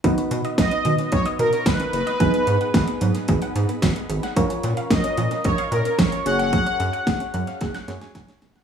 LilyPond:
<<
  \new Staff \with { instrumentName = "Analog polysynth" } { \time 4/4 \key b \lydian \tempo 4 = 111 r4 dis''4 cis''8 ais'8 b'8 b'8~ | b'2~ b'8 r4. | r4 dis''4 cis''8 ais'8 cis''8 fis''8~ | fis''2~ fis''8 r4. | }
  \new Staff \with { instrumentName = "Synth keys" } { \time 4/4 \key b \lydian << { r1 | r1 | r1 | r4. fis''16 eis''16 fis''8. gis''16 gis''4 | } \\ { <b dis' fis' b'>1 | <b dis' gis' b'>1 | <cis' eis' ais' cis''>2.~ <cis' eis' ais' cis''>8 <cis' fis' gis' cis''>8~ | <cis' fis' gis' cis''>2~ <cis' fis' gis' cis''>8 <cis' fis' gis' cis''>4. | } >> }
  \new Staff \with { instrumentName = "Synth arpeggio sound" } { \time 4/4 \key b \lydian dis16 cis'16 b'16 dis''16 b'16 cis'16 dis16 cis'16 b'16 dis''16 b'16 cis'16 dis16 cis'16 b'16 dis''16 | fis16 b16 gis'16 fis''16 gis'16 b16 fis16 b16 gis'16 fis''16 gis'16 b16 fis16 b16 gis'16 fis''16 | eis16 cis'16 ais'16 eis''16 ais'16 cis'16 eis16 cis'16 ais'16 eis''16 ais'16 cis'16 eis16 cis'16 gis'16 fis''16 | fis16 cis'16 gis'16 fis''16 gis'16 cis'16 fis16 cis'16 gis'16 fis''16 gis'16 cis'16 fis16 cis'16 gis'16 fis''16 | }
  \new Staff \with { instrumentName = "Analog synth bass" } { \clef bass \time 4/4 \key b \lydian b,,16 r16 b,16 r16 b,,16 r16 b,16 r16 b,,16 r16 b,16 r16 b,,16 r16 fis,,16 r16 | gis,,16 r16 gis,16 r16 gis,,16 r16 gis,16 r16 gis,,16 r16 gis,16 r16 gis,,16 r16 gis,,16 r16 | ais,,16 r16 ais,16 r16 ais,,16 r16 ais,16 r16 ais,,16 r16 ais,16 r16 ais,,16 r16 fis,,8~ | fis,,16 r16 fis,16 r16 fis,,16 r16 fis,16 r16 fis,,16 r16 fis,16 r16 fis,,16 r16 eis,,16 r16 | }
  \new DrumStaff \with { instrumentName = "Drums" } \drummode { \time 4/4 <hh bd>16 hh16 hh16 hh16 <hh bd sn>16 hh16 hh16 hh16 <hh bd>16 hh16 hh16 hh16 <hh bd sn>16 hh16 hh16 hh16 | <hh bd>16 hh16 hh16 hh16 <hh bd sn>16 hh16 hh16 hh16 <hh bd>16 hh16 hh16 hh16 <hh bd sn>16 hh16 hh16 hh16 | <hh bd>16 hh16 hh16 hh16 <hh bd sn>16 hh16 hh16 hh16 <hh bd>16 hh16 hh16 hh16 <hh bd sn>16 hh16 hh16 hh16 | <hh bd>16 hh16 hh16 hh16 <hh bd sn>16 hh16 hh16 hh16 <hh bd sn>16 <hh sn>16 <hh sn>16 <hh sn>16 <hh bd sn>16 <hh sn>16 <hh sn>16 <hh sn>16 | }
>>